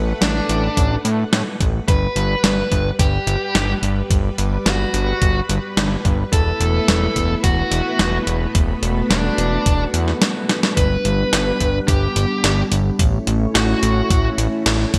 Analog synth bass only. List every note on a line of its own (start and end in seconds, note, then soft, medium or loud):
0.00 0.13 A1 medium
0.22 0.41 A1 medium
0.49 0.69 A1 loud
0.77 0.97 A1 medium
1.05 1.24 A2 medium
1.33 1.42 A2 medium
1.60 1.80 A1 medium
1.88 2.08 G1 loud
2.16 2.35 G1 loud
2.44 2.63 G1 medium
2.72 2.91 G1 loud
2.99 3.19 G1 medium
3.27 3.37 G1 medium
3.55 3.74 G1 medium
3.83 4.02 G1 medium
4.10 4.30 G1 loud
4.38 4.58 G1 medium
4.66 4.85 G1 medium
4.94 5.13 G1 loud
5.22 5.41 G1 medium
5.49 5.59 G1 medium
5.77 5.97 G1 loud
6.05 6.24 G1 medium
6.33 6.52 E1 loud
6.60 6.80 E1 loud
6.88 7.08 E1 medium
7.16 7.35 E1 loud
7.44 7.63 E1 medium
7.71 7.81 E1 medium
7.99 8.19 E1 loud
8.27 8.47 E1 medium
8.55 8.74 E1 loud
8.83 9.02 E1 medium
9.10 9.30 E1 medium
9.38 9.58 E1 loud
9.66 9.86 E1 medium
9.94 10.13 E2 medium
10.77 10.97 G1 loud
11.05 11.24 G1 medium
11.33 11.52 G1 loud
11.60 11.80 G1 loud
11.88 12.08 G1 medium
12.16 12.26 G1 medium
12.44 12.63 G1 loud
12.72 12.91 G1 medium
12.99 13.19 A1 loud
13.27 13.47 A1 medium
13.55 13.74 A1 loud
13.83 14.02 A1 loud
14.10 14.30 A1 medium
14.38 14.48 A1 medium
14.66 14.85 A1 loud
14.94 14.99 A1 medium